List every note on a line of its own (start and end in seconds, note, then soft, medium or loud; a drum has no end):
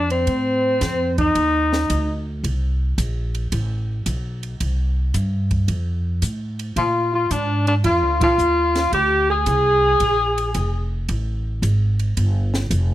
0.00 0.26 F2 medium
0.10 1.15 C4 medium
0.10 ride soft
0.27 0.80 A2 medium
0.27 kick soft
0.27 ride medium
0.81 1.34 F2 medium
0.81 kick soft
0.81 snare soft
0.81 hi-hat pedal medium
0.81 ride medium
1.18 2.23 D#4 medium
1.18 2.24 D#4 medium
1.18 kick soft
1.18 ride soft
1.35 1.88 D#2 medium
1.35 kick soft
1.35 ride medium
1.73 snare medium
1.90 2.42 D2 medium
1.90 kick soft
1.90 hi-hat pedal soft
1.90 ride medium
2.44 2.96 C2 medium
2.44 kick soft
2.44 ride medium
2.98 3.50 A#1 medium
2.98 kick soft
2.98 hi-hat pedal medium
2.98 ride medium
3.35 ride soft
3.52 4.05 A1 medium
3.52 kick soft
3.52 ride medium
4.06 4.59 B1 medium
4.06 kick soft
4.06 hi-hat pedal soft
4.06 ride medium
4.43 ride soft
4.60 5.13 C2 medium
4.60 kick soft
4.60 ride medium
5.14 5.67 G2 medium
5.14 kick soft
5.14 hi-hat pedal medium
5.14 ride medium
5.51 kick soft
5.51 ride soft
5.68 6.21 F2 medium
5.68 kick soft
5.68 ride medium
6.22 6.75 A2 medium
6.22 kick soft
6.22 hi-hat pedal medium
6.22 ride medium
6.59 ride soft
6.76 7.29 A#2 medium
6.76 7.11 F4 medium
6.76 7.12 F4 medium
6.76 kick soft
6.76 ride medium
7.13 7.33 F4 medium
7.30 7.83 G#2 medium
7.30 7.66 D4 medium
7.30 7.67 D4 medium
7.30 kick soft
7.30 hi-hat pedal medium
7.30 ride medium
7.67 7.75 D4 medium
7.67 7.76 D4 medium
7.67 ride soft
7.84 8.02 F2 medium
7.84 8.19 F4 medium
7.84 8.20 F4 medium
7.84 kick soft
7.84 ride medium
8.02 8.20 D2 medium
8.20 8.37 A#1 medium
8.20 8.89 F4 medium
8.20 8.90 F4 loud
8.20 kick medium
8.20 ride medium
8.38 8.91 D#2 medium
8.38 hi-hat pedal soft
8.75 snare soft
8.75 ride soft
8.92 9.45 D2 medium
8.92 9.28 G4 medium
8.92 9.28 G4 loud
8.92 kick soft
8.92 ride medium
9.30 10.88 G#4 loud
9.30 10.89 G#4 loud
9.46 9.99 C2 loud
9.46 kick soft
9.46 hi-hat pedal medium
9.46 ride medium
10.00 10.53 A#1 medium
10.00 kick soft
10.00 ride medium
10.38 ride soft
10.54 11.07 F1 medium
10.54 kick soft
10.54 hi-hat pedal soft
10.54 ride medium
11.09 11.61 A1 medium
11.09 kick soft
11.09 ride medium
11.62 12.15 G#1 medium
11.62 kick soft
11.62 hi-hat pedal soft
11.62 ride medium
11.99 ride soft
12.17 12.70 G1 medium
12.17 kick soft
12.17 ride medium
12.54 snare medium
12.70 12.94 F1 medium
12.70 kick soft
12.70 hi-hat pedal soft
12.70 ride medium